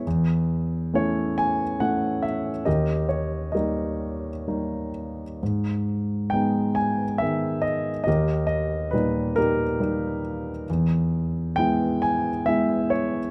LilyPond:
<<
  \new Staff \with { instrumentName = "Grand piano" } { \time 3/4 \key dis \phrygian \tempo 4 = 68 << { r4 cis''8 gis''8 fis''8 e''8 | dis''8 cis''8 dis''4. r8 | r4 g''8 gis''8 e''8 dis''8 | dis''8 dis''8 b'8 ais'4 r8 |
r4 g''8 gis''8 e''8 cis''8 | } \\ { r2. | <g' ais'>4 <g' ais'>4. r8 | r2. | <g' ais'>4. <dis' g'>4. |
r2. | } >> }
  \new Staff \with { instrumentName = "Grand piano" } { \time 3/4 \key dis \phrygian e,4 <a cis' e'>4 <a cis' e'>4 | dis,4 <g ais dis'>4 <g ais dis'>4 | gis,4 <gis b dis'>4 <dis gis b>4 | dis,4 <ais, g dis'>4 <g ais dis'>4 |
e,4 <gis b e'>4 <gis b e'>4 | }
>>